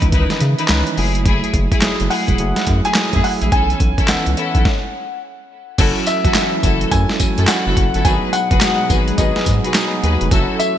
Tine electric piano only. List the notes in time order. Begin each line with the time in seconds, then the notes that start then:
Already playing: D#3 E3 C#4 D#4 B4
0.13 D#3 E3 C#4 B4
0.69 E3 C#4 D#4 B4 C#5
0.98 F#3 A3 E4 G#4
1.83 F#3 A3 E4 G#4
2.39 F#3 A3 E4 G#4
2.96 F#3 A3 E4 G#4
3.52 E3 B3 C#4 G#4
3.60 A4
4.09 E3 B3 C#4 A4
5.79 F#3 C#4 E4 A4
6.35 F#3 C#4 E4 A4
6.92 F#3 C#4 E4 A4
7.48 F#3 C#4 E4 F#4
8.05 F#3 B3 D#4 F#4
8.13 G#4
8.62 F#3 B3 D#4 G#4
9.18 F#3 B3 D#4 G#4
9.75 F#3 B3 D#4 G#4
10.32 F#3 C#4 E4 A4